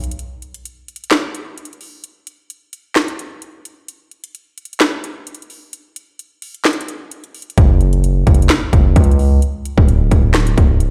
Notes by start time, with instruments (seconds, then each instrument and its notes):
0.04 closed hi-hat
0.11 closed hi-hat
0.19 closed hi-hat
0.42 closed hi-hat
0.54 closed hi-hat
0.65 closed hi-hat
0.88 closed hi-hat
0.96 closed hi-hat
1.04 closed hi-hat
1.11 snare, clap, closed hi-hat
1.35 closed hi-hat
1.58 closed hi-hat
1.65 closed hi-hat
1.73 closed hi-hat
1.81 open hi-hat
2.04 closed hi-hat
2.27 closed hi-hat
2.50 closed hi-hat
2.73 closed hi-hat
2.96 snare, clap, closed hi-hat
3.08 closed hi-hat
3.19 closed hi-hat
3.42 closed hi-hat
3.65 closed hi-hat
3.88 closed hi-hat
4.11 closed hi-hat
4.24 closed hi-hat
4.35 closed hi-hat
4.58 closed hi-hat
4.65 closed hi-hat
4.73 closed hi-hat
4.80 snare, clap, closed hi-hat
5.04 closed hi-hat
5.27 closed hi-hat
5.35 closed hi-hat
5.42 closed hi-hat
5.50 open hi-hat
5.73 closed hi-hat
5.96 closed hi-hat
6.19 closed hi-hat
6.42 closed hi-hat, open hi-hat
6.54 closed hi-hat
6.65 snare, clap, closed hi-hat
6.73 closed hi-hat
6.81 closed hi-hat
6.88 closed hi-hat
7.11 closed hi-hat
7.24 closed hi-hat
7.35 closed hi-hat, open hi-hat
7.42 closed hi-hat
7.50 closed hi-hat
7.58 808-style bass F#1, kick, closed hi-hat
7.81 closed hi-hat
7.93 closed hi-hat
8.04 closed hi-hat
8.27 808-style bass F#1, kick, closed hi-hat
8.35 closed hi-hat
8.42 closed hi-hat
8.50 snare, clap, closed hi-hat
8.73 808-style bass F#1, kick, closed hi-hat
8.96 808-style bass C#2, kick, closed hi-hat
9.04 closed hi-hat
9.11 closed hi-hat
9.19 open hi-hat
9.42 closed hi-hat
9.65 closed hi-hat
9.78 808-style bass D1, kick
9.89 closed hi-hat
10.11 808-style bass D1, kick, closed hi-hat
10.34 snare, clap, closed hi-hat
10.47 closed hi-hat
10.58 808-style bass C#1, kick, closed hi-hat
10.80 closed hi-hat